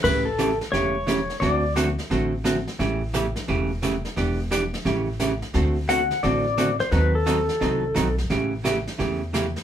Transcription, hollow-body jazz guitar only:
X:1
M:4/4
L:1/16
Q:"Swing" 1/4=174
K:Amix
V:1 name="Hollow-body jazz guitar"
[C,E,A,CG]2 z2 [C,E,A,CG] z3 [C,E,A,CG]2 z2 [C,E,A,CG] z3 | [D,A,=CFA]2 z2 [D,A,CFA] z3 [D,A,CFA]2 z2 [D,A,CFA] z3 | [C,E,A,CG]2 z2 [C,E,A,CG] z3 [C,E,A,CG]2 z2 [C,E,A,CG] z3 | [E,B,DG]2 z2 [E,B,DG] z3 [C,E,A,CG]2 z2 [C,E,A,CG] z3 |
[D,A,=CFA]2 z2 [D,A,CFA] z3 [D,A,CFA]2 z2 [D,A,CFA] z3 | [^D,F,^B,^DA]2 z2 [D,F,B,DA] z3 [D,F,B,DA]2 z2 [D,F,B,DA] z3 | [C,E,A,CG]2 z2 [C,E,A,CG] z3 [C,E,A,CG]2 z2 [C,E,A,CG] z3 |]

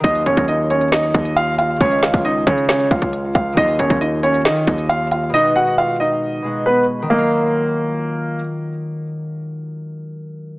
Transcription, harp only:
X:1
M:4/4
L:1/8
Q:1/4=136
K:Ebm
V:1 name="Harp" clef=bass
[E,G,F]8 | [D,A,F]8 | [E,G,F]8 | [C,A,G]4- [C,A,G] [C,A,G]3 |
[E,G,F]8- | [E,G,F]8 |]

